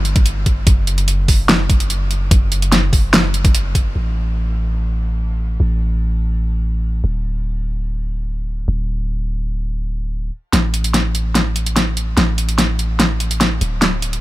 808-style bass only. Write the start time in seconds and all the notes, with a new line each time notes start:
Already playing: G1
0.67 F#1
2.31 F#1
3.96 A1
5.60 A1
7.04 D1
8.68 D1
10.53 A1
12.17 A1
13.61 D1